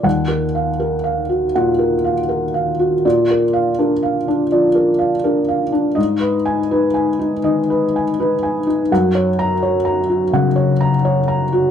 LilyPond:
<<
  \new Staff \with { instrumentName = "Felt piano" } { \time 4/4 \key ees \minor \tempo 4 = 82 << { ges''8 r2. r8 | \tuplet 3/2 { r4 f''8 } r2. | \tuplet 3/2 { r4 aes''8 } r2. | \tuplet 3/2 { r4 bes''8 } r2. | } \\ { \tuplet 3/2 { r8 bes'8 f''8 bes'8 f''8 ges'8 ges''8 bes'8 f''8 bes'8 f''8 ges'8 } | \tuplet 3/2 { d''8 bes'4 bes'8 f''8 d'8 d''8 bes'8 f''8 bes'8 f''8 d'8 } | \tuplet 3/2 { ees''8 ces''4 ces''8 aes''8 ees'8 ees''8 ces''8 aes''8 ces''8 aes''8 ees'8 } | \tuplet 3/2 { ges''8 des''4 des''8 bes''8 ges'8 ges''8 des''8 bes''8 des''8 bes''8 ges'8 } | } >> }
  \new Staff \with { instrumentName = "Felt piano" } { \clef bass \time 4/4 \key ees \minor ees,2 bes,4 r4 | bes,4 d'4 f4 d'4 | aes,4 ees'4 ees4 ees'4 | ges,2 des4 r4 | }
>>